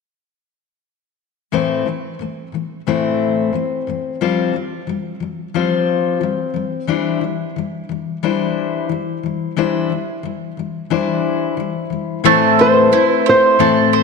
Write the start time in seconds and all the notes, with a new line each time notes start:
1.52 A2 E3 A3 C4 E4 C5
1.86 A2 E3 A3
2.19 A2 E3 A3
2.52 A2 E3 A3
2.87 A2 E3 A3 C4 E4 C5
3.53 A2 E3 A3
3.87 A2 E3 A3
4.21 F3 G3 C4 F4 C5
4.54 F3 G3
4.87 F3 G3
5.20 F3 G3
5.54 F3 G3 C4 F4 C5
6.21 F3 G3
6.54 F3 G3
6.87 E3 G3 D4 E4 C5
7.21 E3 G3
7.56 E3 G3
7.89 E3 G3
8.23 E3 G3 D4 E4 C5
8.89 E3 G3
9.23 E3 G3
9.56 E3 G3 D4 E4 C5
9.90 E3 G3
10.23 E3 G3
10.57 E3 G3
10.90 E3 G3 D4 E4 C5
11.57 E3 G3
11.90 E3 G3
12.24 A2 E3 A3 C4 E4 C5 A5
12.59 C5
12.92 A3 C4 E4 C5
13.09 B4
13.26 C5
13.59 A2 E3 A3 C4 E4 C5 A5
13.93 C5